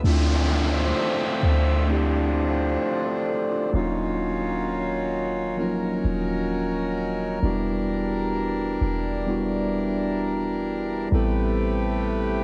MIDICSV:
0, 0, Header, 1, 5, 480
1, 0, Start_track
1, 0, Tempo, 923077
1, 23, Time_signature, 4, 2, 24, 8
1, 6468, End_track
2, 0, Start_track
2, 0, Title_t, "Tine electric piano"
2, 0, Program_c, 0, 4
2, 0, Control_c, 0, 64, 127
2, 17, Note_on_c, 0, 57, 85
2, 23, Note_on_c, 0, 60, 81
2, 28, Note_on_c, 0, 62, 80
2, 30, Control_c, 0, 64, 0
2, 33, Note_on_c, 0, 64, 78
2, 37, Note_on_c, 0, 65, 97
2, 120, Control_c, 0, 64, 127
2, 766, Note_off_c, 0, 57, 0
2, 769, Note_off_c, 0, 60, 0
2, 771, Note_off_c, 0, 62, 0
2, 774, Note_off_c, 0, 64, 0
2, 776, Note_off_c, 0, 65, 0
2, 977, Note_on_c, 0, 57, 83
2, 983, Note_on_c, 0, 60, 77
2, 987, Note_on_c, 0, 62, 80
2, 993, Note_on_c, 0, 64, 80
2, 998, Note_on_c, 0, 67, 94
2, 1465, Note_off_c, 0, 62, 0
2, 1468, Note_off_c, 0, 64, 0
2, 1470, Note_off_c, 0, 67, 0
2, 1587, Note_on_c, 0, 72, 63
2, 1590, Note_on_c, 0, 69, 54
2, 1699, Note_off_c, 0, 72, 0
2, 1701, Note_off_c, 0, 69, 0
2, 1709, Note_on_c, 0, 69, 67
2, 1712, Note_on_c, 0, 65, 58
2, 1726, Note_off_c, 0, 57, 0
2, 1729, Note_off_c, 0, 60, 0
2, 1820, Note_off_c, 0, 69, 0
2, 1822, Note_off_c, 0, 65, 0
2, 1828, Note_on_c, 0, 65, 60
2, 1832, Note_on_c, 0, 62, 51
2, 1938, Note_on_c, 0, 54, 85
2, 1944, Note_on_c, 0, 58, 81
2, 1949, Control_c, 0, 64, 0
2, 1949, Note_on_c, 0, 61, 82
2, 1952, Note_off_c, 0, 65, 0
2, 1954, Note_on_c, 0, 63, 78
2, 1959, Note_on_c, 0, 65, 98
2, 2039, Control_c, 0, 64, 127
2, 2056, Note_off_c, 0, 62, 0
2, 2686, Note_off_c, 0, 54, 0
2, 2689, Note_off_c, 0, 58, 0
2, 2692, Note_off_c, 0, 61, 0
2, 2694, Note_off_c, 0, 63, 0
2, 2697, Note_off_c, 0, 65, 0
2, 2896, Note_on_c, 0, 53, 68
2, 2902, Note_on_c, 0, 58, 78
2, 2907, Note_on_c, 0, 61, 83
2, 2911, Note_on_c, 0, 63, 83
2, 2917, Note_on_c, 0, 65, 98
2, 2930, Note_on_c, 0, 54, 84
2, 2933, Note_off_c, 0, 53, 0
2, 3648, Note_off_c, 0, 58, 0
2, 3651, Note_off_c, 0, 61, 0
2, 3653, Note_off_c, 0, 63, 0
2, 3656, Note_off_c, 0, 65, 0
2, 3662, Note_off_c, 0, 54, 0
2, 3856, Note_on_c, 0, 54, 69
2, 3861, Note_on_c, 0, 59, 81
2, 3867, Note_on_c, 0, 62, 82
2, 3869, Control_c, 0, 64, 0
2, 3871, Note_on_c, 0, 64, 80
2, 3877, Note_on_c, 0, 66, 101
2, 3890, Note_on_c, 0, 55, 87
2, 3893, Note_off_c, 0, 54, 0
2, 3961, Control_c, 0, 64, 127
2, 4608, Note_off_c, 0, 59, 0
2, 4611, Note_off_c, 0, 62, 0
2, 4612, Note_off_c, 0, 64, 0
2, 4616, Note_off_c, 0, 66, 0
2, 4622, Note_off_c, 0, 55, 0
2, 4817, Note_on_c, 0, 55, 86
2, 4821, Note_on_c, 0, 59, 76
2, 4826, Note_on_c, 0, 62, 82
2, 4832, Note_on_c, 0, 64, 82
2, 4837, Note_on_c, 0, 66, 93
2, 5566, Note_off_c, 0, 55, 0
2, 5568, Note_off_c, 0, 59, 0
2, 5570, Note_off_c, 0, 62, 0
2, 5573, Note_off_c, 0, 64, 0
2, 5575, Note_off_c, 0, 66, 0
2, 5776, Note_on_c, 0, 55, 85
2, 5782, Note_on_c, 0, 59, 84
2, 5786, Note_on_c, 0, 60, 80
2, 5790, Control_c, 0, 64, 0
2, 5791, Note_on_c, 0, 64, 79
2, 5796, Note_on_c, 0, 69, 97
2, 5886, Control_c, 0, 64, 127
2, 6468, Note_off_c, 0, 55, 0
2, 6468, Note_off_c, 0, 59, 0
2, 6468, Note_off_c, 0, 60, 0
2, 6468, Note_off_c, 0, 64, 0
2, 6468, Note_off_c, 0, 69, 0
2, 6468, End_track
3, 0, Start_track
3, 0, Title_t, "Harmonium"
3, 0, Program_c, 1, 20
3, 24, Note_on_c, 1, 53, 64
3, 25, Note_on_c, 1, 50, 68
3, 26, Note_on_c, 1, 60, 65
3, 26, Note_on_c, 1, 76, 77
3, 975, Note_off_c, 1, 76, 0
3, 985, Note_on_c, 1, 62, 78
3, 1925, Note_off_c, 1, 50, 0
3, 1925, Note_off_c, 1, 53, 0
3, 1925, Note_off_c, 1, 60, 0
3, 1934, Note_off_c, 1, 62, 0
3, 1943, Note_on_c, 1, 51, 70
3, 1944, Note_on_c, 1, 65, 72
3, 1945, Note_on_c, 1, 54, 61
3, 1946, Note_on_c, 1, 61, 62
3, 2894, Note_off_c, 1, 65, 0
3, 2902, Note_on_c, 1, 70, 74
3, 3844, Note_off_c, 1, 51, 0
3, 3845, Note_off_c, 1, 54, 0
3, 3845, Note_off_c, 1, 61, 0
3, 3862, Note_on_c, 1, 62, 67
3, 3863, Note_on_c, 1, 55, 65
3, 3864, Note_on_c, 1, 52, 68
3, 5762, Note_off_c, 1, 70, 0
3, 5763, Note_off_c, 1, 62, 0
3, 5764, Note_off_c, 1, 52, 0
3, 5764, Note_off_c, 1, 55, 0
3, 5784, Note_on_c, 1, 48, 74
3, 5784, Note_on_c, 1, 71, 62
3, 5786, Note_on_c, 1, 57, 63
3, 5786, Note_on_c, 1, 67, 75
3, 6468, Note_off_c, 1, 48, 0
3, 6468, Note_off_c, 1, 57, 0
3, 6468, Note_off_c, 1, 67, 0
3, 6468, Note_off_c, 1, 71, 0
3, 6468, End_track
4, 0, Start_track
4, 0, Title_t, "808-style bass"
4, 0, Program_c, 2, 38
4, 22, Note_on_c, 2, 38, 109
4, 484, Note_off_c, 2, 38, 0
4, 743, Note_on_c, 2, 38, 99
4, 1442, Note_off_c, 2, 38, 0
4, 1943, Note_on_c, 2, 27, 108
4, 3122, Note_off_c, 2, 27, 0
4, 3143, Note_on_c, 2, 27, 102
4, 3842, Note_off_c, 2, 27, 0
4, 3863, Note_on_c, 2, 28, 112
4, 4562, Note_off_c, 2, 28, 0
4, 4582, Note_on_c, 2, 28, 103
4, 5762, Note_off_c, 2, 28, 0
4, 5783, Note_on_c, 2, 33, 113
4, 6468, Note_off_c, 2, 33, 0
4, 6468, End_track
5, 0, Start_track
5, 0, Title_t, "Downlifter"
5, 0, Program_c, 3, 103
5, 23, Note_on_c, 3, 60, 79
5, 3863, Note_off_c, 3, 60, 0
5, 6468, End_track
0, 0, End_of_file